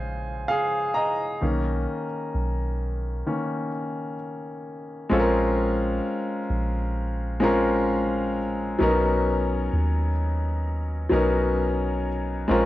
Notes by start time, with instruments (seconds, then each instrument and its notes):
Already playing: 808-style bass A#1, grand piano C#3 G#3 C4 G#4 C5 F5 G#5
0.48 grand piano G#4 F5
0.94 grand piano D#5 A#5
1.41 808-style bass B1, grand piano D#3 A#3 C#4
2.34 808-style bass B1
3.26 grand piano D#3 A#3 C#4
5.10 808-style bass A#1, grand piano G#3 C4 C#4 F4 A4
5.20 grand piano A#4
6.50 808-style bass A#1
7.40 grand piano G#3 C4 C#4 F4 A#4
8.79 808-style bass B1, grand piano F#3 B3 C#4 D#4 A#4
9.73 808-style bass D#2
11.09 808-style bass B1, grand piano F#3 B3 C#4 D#4 A#4
12.48 808-style bass A#1, grand piano G#3 C4 C#4 F4 A#4